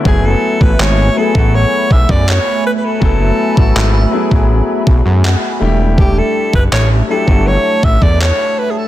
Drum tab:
CP |----x-------x---|----x-------x---|----x-------x---|
BD |o--o---o--oo----|o--o---o--o-----|o--o---o--oo----|